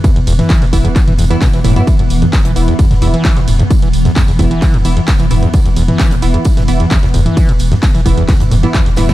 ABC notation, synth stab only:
X:1
M:4/4
L:1/16
Q:1/4=131
K:Clyd
V:1 name="Synth stab"
z6 [E,B,E] z4 [E,B,E] z2 [E,B,E] [E,B,E] | z6 [E,B,E]2 z2 [E,B,E] z4 z | z6 [E,B,E] z3 [E,B,E] z3 [E,B,E] z | z6 [E,B,E]2 z2 [E,B,E] z4 z |
z6 [E,B,E] z4 [E,B,E] z2 [E,B,E] [E,B,E] |]